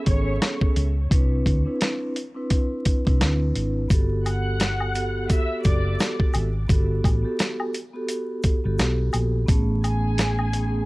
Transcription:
Already playing: B3 C#4 G#4 A4
0.06 G#1 C#5 C#6, kick, closed hi-hat
0.42 cross-stick, snare, closed hi-hat
0.61 kick
0.76 C#2, closed hi-hat
1.10 C2 C4 D4 E4 B4, kick, closed hi-hat
1.46 D2, kick, closed hi-hat
1.65 C4 D4 E4 B4
1.81 cross-stick, snare, closed hi-hat
2.16 closed hi-hat
2.34 C4 D4 E4 B4
2.50 kick, closed hi-hat
2.85 kick, closed hi-hat
3.05 C2 C4 D4 E4 B4, kick, closed hi-hat
3.21 D2, cross-stick, snare, closed hi-hat
3.56 G#1, closed hi-hat
3.88 G1 B3 F#4 G4 A4, kick, closed hi-hat, shaker
4.25 F#5 F#6, closed hi-hat, high woodblock, shaker
4.60 cross-stick, snare, closed hi-hat, shaker
4.80 high woodblock
4.94 B3 F#4 G4 A4, closed hi-hat, shaker
5.28 B3 F#4 G4 A4 E5 E6, kick, closed hi-hat, shaker
5.63 F#1 D5 D6, kick, closed hi-hat, shaker
5.99 cross-stick, snare, closed hi-hat, shaker
6.20 kick
6.34 G#1, closed hi-hat, high woodblock, shaker
6.68 G1 B3 F#4 G4 A4, kick, closed hi-hat, shaker
7.04 A1, kick, closed hi-hat, high woodblock, shaker
7.23 B3 F#4 G4 A4
7.39 cross-stick, snare, closed hi-hat, shaker
7.60 high woodblock
7.74 closed hi-hat, shaker
7.93 B3 F#4 G4 A4
8.09 closed hi-hat, shaker
8.43 kick, closed hi-hat, shaker
8.64 G1 B3 F#4 G4 A4
8.79 B1, cross-stick, snare, closed hi-hat, shaker
9.13 A#1, closed hi-hat, high woodblock, shaker
9.46 A1 A3 B3 C#4 G#4, kick, closed hi-hat, shaker
9.84 G#4 G#5, closed hi-hat, high woodblock, shaker
10.18 cross-stick, snare, closed hi-hat, shaker
10.39 high woodblock
10.53 A3 B3 C#4 G#4, closed hi-hat, shaker

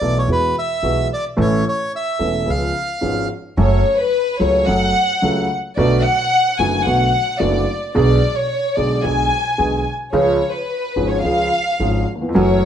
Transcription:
Already playing: D5
0.01 B1 B2 E3 A3 B3 A4
0.19 C#5
0.28 E2 E3 G#3 B3 F#4
0.32 B4
0.59 E5
0.83 B1 B2 E3 G#3 B3 F#4
1.13 D5
1.37 A1 A2 E3 A3 C#4 A4
1.41 C#5
1.69 C#5
1.96 E5
2.19 E1 E2 E3 A3 C#4 A4
2.46 C#2 C#3 F3 B3 C#4 G#4
2.50 F5
3.01 G#1 G#2 F3 B3 C#4 G#4
3.57 F#1 F#2 F#3 A3 C#4 A4 C#5
3.98 B4
4.39 C#2 C#3 F#3 A3 C#4 A4 C#5
4.67 F#1 F#2 F#3 A3 C#4 A4 F#5
5.22 C#2 C#3 F#3 A3 C#4 A4
5.77 B1 B2 D3 A3 B3 F#4 D5
6.05 F#5
6.59 F#1 F#2 D3 A3 B3 F#4 G#5
6.86 B1 B2 D3 A3 B3 F#4 F#5
7.40 F#1 F#2 D3 A3 B3 F#4 D5
7.95 B1 B2 D3 G#3 B3 G#4 D5
8.35 C#5
8.76 B1 B2 D3 G#3 B3 G#4 D5
9.03 B1 B2 D3 G#3 B3 G#4 G#5
9.58 B1 B2 D3 G#3 B3 G#4
10.12 C#2 C#3 F3 G#3 C#4 G#4 C#5
10.54 B4
10.96 G#1 G#2 F3 G#3 C#4 G#4
11.09 C#5
11.22 C#2 C#3 F3 G#3 C#4 G#4 F5
11.80 G#1 G#2 F3 G#3 C#4 G#4
12.15 D#2
12.22 E2
12.29 F2
12.34 F#1 F#2 E3 F#3 A3 C#4 F#4 C#5

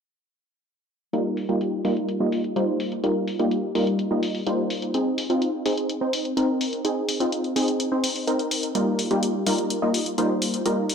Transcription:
1.13 G3 A#3 D#4 F4 A#4, closed hi-hat
1.37 open hi-hat
1.49 G3 A#3 D#4 F4 G4, closed hi-hat
1.61 closed hi-hat
1.85 G3 A#3 D#4 F4 A#4, open hi-hat
1.97 closed hi-hat
2.09 closed hi-hat
2.20 G3 A#3 D#4 F4 D#5
2.32 open hi-hat
2.44 closed hi-hat
2.56 G3 A#3 D#4 F4 C5, closed hi-hat
2.80 open hi-hat
2.92 closed hi-hat
3.04 G3 A#3 D#4 F4 A#4, closed hi-hat
3.28 open hi-hat
3.39 G3 A#3 D#4 F4 G4, closed hi-hat
3.51 closed hi-hat
3.75 G3 A#3 D#4 F4 A#4, open hi-hat
3.87 closed hi-hat
3.99 closed hi-hat
4.11 G3 A#3 D#4 F4 D#5
4.23 open hi-hat
4.35 open hi-hat
4.47 G3 A#3 D#4 F4 C5, closed hi-hat
4.70 open hi-hat
4.82 closed hi-hat
4.94 C4 D#4 G#4, closed hi-hat
5.18 open hi-hat
5.30 C4 D#4 F4, closed hi-hat
5.42 closed hi-hat
5.66 C4 D#4 G#4, open hi-hat
5.77 closed hi-hat
5.89 closed hi-hat
6.01 C4 D#4 C5
6.13 open hi-hat
6.25 closed hi-hat
6.37 C4 D#4 A#4, closed hi-hat
6.61 open hi-hat
6.73 closed hi-hat
6.85 C4 D#4 G#4, closed hi-hat
7.09 open hi-hat
7.20 C4 D#4 F4, closed hi-hat
7.32 closed hi-hat
7.44 closed hi-hat
7.56 C4 D#4 G#4, open hi-hat
7.68 closed hi-hat
7.80 closed hi-hat
7.92 C4 D#4 C5
8.04 open hi-hat
8.16 open hi-hat
8.27 C4 D#4 A#4, closed hi-hat
8.39 closed hi-hat
8.51 open hi-hat
8.63 closed hi-hat
8.75 G3 A#3 D#4 F4 A#4, closed hi-hat
8.99 open hi-hat
9.11 G3 A#3 D#4 F4 G4, closed hi-hat
9.23 closed hi-hat
9.47 G3 A#3 D#4 F4 A#4, open hi-hat
9.58 closed hi-hat
9.70 closed hi-hat
9.82 G3 A#3 D#4 F4 D#5
9.94 open hi-hat
10.06 closed hi-hat
10.18 G3 A#3 D#4 F4 C5, closed hi-hat
10.42 open hi-hat
10.54 closed hi-hat
10.66 G3 A#3 D#4 F4 A#4, closed hi-hat
10.89 open hi-hat

